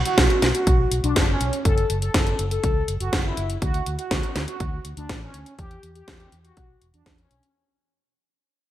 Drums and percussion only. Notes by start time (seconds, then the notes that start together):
0.06 closed hi-hat
0.18 kick, snare, closed hi-hat
0.30 closed hi-hat
0.42 snare, closed hi-hat
0.55 closed hi-hat
0.67 kick, closed hi-hat
0.92 closed hi-hat
1.04 closed hi-hat
1.16 kick, snare, closed hi-hat
1.41 closed hi-hat
1.53 closed hi-hat
1.65 kick, closed hi-hat
1.78 closed hi-hat
1.90 closed hi-hat
2.02 closed hi-hat
2.14 kick, snare, closed hi-hat
2.27 closed hi-hat
2.39 closed hi-hat
2.51 closed hi-hat
2.64 kick, closed hi-hat
2.88 closed hi-hat
3.00 closed hi-hat
3.13 kick, snare, closed hi-hat
3.37 closed hi-hat
3.50 closed hi-hat
3.62 kick, closed hi-hat
3.74 closed hi-hat
3.86 closed hi-hat
3.99 closed hi-hat
4.11 kick, snare, closed hi-hat
4.23 closed hi-hat
4.36 snare, closed hi-hat
4.48 closed hi-hat
4.60 kick, closed hi-hat
4.85 closed hi-hat
4.97 closed hi-hat
5.09 kick, snare, closed hi-hat
5.34 closed hi-hat
5.46 closed hi-hat
5.59 kick, closed hi-hat
5.71 closed hi-hat
5.83 closed hi-hat
5.95 closed hi-hat
6.08 kick, snare, closed hi-hat
6.20 closed hi-hat
6.32 closed hi-hat
6.45 closed hi-hat
6.57 kick, closed hi-hat
6.82 closed hi-hat
6.94 closed hi-hat
7.06 kick, snare, closed hi-hat
7.18 closed hi-hat
7.31 closed hi-hat
7.43 closed hi-hat